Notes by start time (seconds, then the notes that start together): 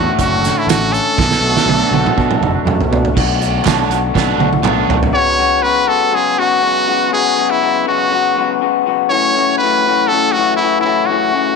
Already playing: A2 D3 A3 C#4 F#4
0.17 F#1 C#4, kick, closed hi-hat
0.21 F#4
0.41 D3, snare, closed hi-hat
0.58 E4
0.66 A1 A3 F#4, closed hi-hat, tambourine
0.70 snare
0.91 C#4 A4, closed hi-hat
1.17 B1 B2 F#3 B3 D4 F#4, kick, snare
1.31 snare
1.41 B1 A3
1.57 snare
1.66 B1 D4, high tom
1.91 B1 F#4, high tom
2.06 mid tom
2.16 B2 D4, kick
2.31 mid tom
2.41 F#1 F#3, mid tom
2.65 F#2 A3, mid tom
2.81 floor tom
2.90 B2 D4, floor tom
3.05 floor tom
3.14 B1 B2 F#3 A3 D4 F#4, kick, crash
3.40 A3 D4 F#4, closed hi-hat
3.64 B1 B2 F#3 A3 B3 D4 F#4, kick, snare, clap, closed hi-hat, tambourine
3.88 B1 D4 F#4, closed hi-hat
3.92 A3
4.14 B1 B2 F#3 B3 D4, kick, snare
4.38 B1 D4 F#4, high tom
4.42 A3
4.53 high tom
4.62 B1 B2 F#3 A3 B3 D4, clap, mid tom
4.66 D4 F#4
4.88 B1, floor tom
5.03 floor tom
5.13 C#3 F#3 G#3 B3 F#4 C#5
5.38 C#3 F#3 G#3 B3 F#4
5.62 C#3 F#3 G#3 B3 F#4 B4
5.86 C#3 F#3 G#3 B3 F#4 A4
6.11 C#3 F#3 G#3 B3 F#4 G#4
6.37 C#3 F#3 G#3 B3 F#4
6.61 C#3 F#3 G#3 B3 F#4
6.87 C#3 F#3 G#3 B3 F#4
7.11 C#3 F#3 G#3 B3 F#4 G#4
7.36 C#3 F#3 G#3 B3 F#4
7.50 E4
7.61 C#3 F#3 G#3 B3 F#4
7.85 C#3 F#3 G#3 B3 F#4
8.10 C#3 F#3 G#3 B3 F#4
8.37 C#3 F#3 G#3 B3 F#4
8.61 C#3 F#3 G#3 B3 F#4
8.86 C#3 F#3 G#3 B3 F#4
9.09 F#2 C#3 E3 A3 C#4 F#4 C#5
9.35 F#2 C#3 E3 A3 C#4 F#4
9.58 F#2 C#3 E3 B4
9.63 A3 C#4 F#4
9.86 F#2 C#3 E3 A3 C#4 F#4
10.08 F#2 C#3 E3 A3 A4
10.12 C#4 F#4
10.32 F#2 F#4
10.36 C#3 E3 A3 C#4 F#4
10.56 F#2 E4
10.61 C#3 E3 A3 C#4 F#4
10.81 F#2 C#3 E3 A3 E4
10.85 C#4 F#4
11.06 F#2 C#3 E3 A3 F#4
11.11 C#4 F#4
11.33 F#2 C#3 E3 A3 C#4 F#4